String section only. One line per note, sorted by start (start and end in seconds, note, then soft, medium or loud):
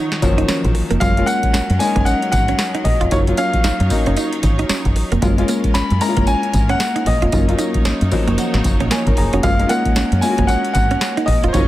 0.00 0.99 D#3 medium
0.00 0.99 D#4 medium
0.00 0.99 C#5 medium
1.01 5.18 F#3 medium
1.01 3.10 C#4 medium
1.01 3.10 A#4 medium
3.12 5.20 D#4 medium
3.12 5.20 C#5 medium
5.22 11.50 A#3 medium
5.22 7.31 C#4 medium
5.22 7.31 A#4 medium
7.33 9.41 D#4 medium
7.33 9.41 C#5 medium
9.43 11.52 C#4 medium
9.43 11.52 A#4 medium
11.54 11.68 F#3 medium
11.54 11.68 D#4 medium
11.54 11.68 C#5 medium
11.54 11.68 D#5 medium